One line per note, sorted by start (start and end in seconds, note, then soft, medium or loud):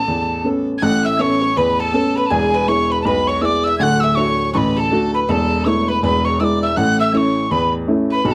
0.00 0.78 A1 medium
0.00 0.64 A4 medium
0.00 0.68 A4 medium
0.00 0.48 A5 loud
0.08 0.44 E2 medium
0.44 0.74 B3 soft
0.44 0.75 C#4 soft
0.44 0.75 A4 medium
0.78 1.03 F#5 medium
0.78 0.85 G#6 medium
0.82 2.27 A1 medium
0.82 1.19 A2 medium
0.82 1.03 F#5 medium
0.82 1.07 F#6 loud
1.04 1.21 E5 medium
1.04 1.18 E5 medium
1.04 1.23 E6 loud
1.19 1.49 B3 medium
1.19 1.49 C#4 soft
1.19 1.50 A4 medium
1.19 1.40 C#5 medium
1.19 1.58 C#5 medium
1.19 1.59 C#6 loud
1.41 1.55 C#5 medium
1.57 1.93 E2 medium
1.57 1.81 B4 medium
1.57 1.78 B4 medium
1.57 1.81 B5 loud
1.80 2.18 A4 loud
1.80 1.93 A4 medium
1.80 2.17 A5 loud
1.94 2.24 B3 medium
1.94 2.24 C#4 medium
1.94 2.15 A4 medium
1.94 2.24 A4 medium
2.16 2.34 B4 medium
2.16 2.31 B4 medium
2.16 2.28 B5 medium
2.26 2.34 A5 medium
2.30 3.76 E1 medium
2.30 2.67 E2 medium
2.30 2.54 G#4 medium
2.30 2.55 G#4 medium
2.30 2.70 G#5 loud
2.54 2.70 B4 medium
2.54 2.68 B4 medium
2.68 2.98 B3 medium
2.68 2.98 E4 soft
2.68 2.98 G#4 medium
2.68 2.92 C#5 medium
2.68 2.90 C#5 medium
2.68 2.93 C#6 loud
2.90 3.04 B4 medium
2.90 3.05 B4 medium
2.90 3.01 B5 medium
3.02 3.41 B1 medium
3.02 3.29 B4 medium
3.02 3.07 A5 medium
3.02 3.29 B5 loud
3.07 3.28 B4 medium
3.27 3.43 C#5 medium
3.27 3.42 C#5 medium
3.27 3.43 C#6 loud
3.41 3.72 B3 medium
3.41 3.72 E4 medium
3.41 3.72 G#4 medium
3.41 3.67 D5 medium
3.41 3.65 D5 medium
3.41 3.46 E6 medium
3.45 3.65 D6 loud
3.64 3.82 E5 medium
3.64 3.80 E5 medium
3.64 3.78 E6 loud
3.78 5.24 D1 medium
3.78 4.16 D2 medium
3.78 4.05 F#5 loud
3.78 4.01 F#5 loud
3.78 3.84 G#6 loud
3.83 4.02 F#6 loud
4.00 4.20 E5 medium
4.00 4.18 E5 medium
4.00 4.17 E6 loud
4.15 4.46 A3 medium
4.15 4.47 D4 medium
4.15 4.47 F#4 medium
4.15 4.53 C#5 medium
4.15 4.54 C#5 medium
4.15 4.53 C#6 loud
4.53 4.91 A1 medium
4.53 4.76 B4 medium
4.53 4.79 B4 medium
4.53 4.58 C#6 loud
4.57 4.76 B5 loud
4.76 5.11 A4 medium
4.76 5.16 A4 medium
4.76 5.13 A5 medium
4.76 4.81 B5 medium
4.91 5.21 A3 medium
4.91 5.21 D4 medium
4.91 5.21 F#4 medium
5.14 5.28 B4 medium
5.14 5.31 B4 medium
5.14 5.20 B5 loud
5.27 5.99 E1 medium
5.27 5.65 E2 medium
5.27 5.63 A4 medium
5.27 5.67 A4 medium
5.27 5.32 B5 loud
5.31 5.66 A5 loud
5.65 5.95 A3 medium
5.65 5.96 B3 soft
5.65 5.96 E4 medium
5.65 5.88 C#5 medium
5.65 5.90 C#6 loud
5.65 5.69 E6 medium
5.88 6.02 B4 medium
5.88 6.03 B5 medium
6.02 6.73 E1 medium
6.02 6.39 E2 medium
6.02 6.28 B4 medium
6.02 6.24 B4 medium
6.02 6.26 B5 loud
6.25 6.39 C#5 medium
6.25 6.42 C#5 medium
6.25 6.41 C#6 medium
6.40 6.70 G#3 medium
6.40 6.70 B3 soft
6.40 6.70 E4 medium
6.40 6.61 D5 medium
6.40 6.66 D5 medium
6.40 6.45 E6 medium
6.44 6.62 D6 medium
6.62 6.76 E5 medium
6.62 6.79 E5 medium
6.62 6.78 E6 loud
6.76 8.22 A1 medium
6.76 7.13 A2 medium
6.76 6.98 F#5 medium
6.76 7.01 F#5 medium
6.76 6.99 F#6 loud
6.99 7.16 E5 medium
6.99 7.14 E5 medium
6.99 7.13 E6 medium
7.13 7.43 A3 medium
7.13 7.44 C#4 soft
7.13 7.44 E4 medium
7.13 7.49 C#5 medium
7.13 7.51 C#5 medium
7.13 7.53 C#6 loud
7.13 7.18 E6 medium
7.51 7.87 E2 medium
7.51 7.72 B4 medium
7.51 7.74 B5 loud
7.88 8.18 A3 medium
7.88 8.18 C#4 medium
7.88 8.18 E4 medium
8.10 8.25 B4 medium
8.10 8.28 B5 medium
8.24 8.34 B1 medium
8.24 8.34 B2 medium
8.24 8.34 A4 medium
8.24 8.32 B5 loud